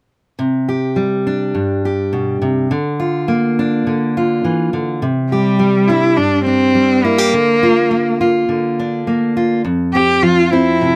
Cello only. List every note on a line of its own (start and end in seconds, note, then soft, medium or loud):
5.31 5.89 G3 medium
5.87 6.18 E4 medium
6.17 6.44 D4 medium
6.45 7.05 C4 medium
7.04 8.19 A#3 medium
9.93 10.24 G4 medium
10.22 10.53 F4 medium
10.51 10.96 E4 medium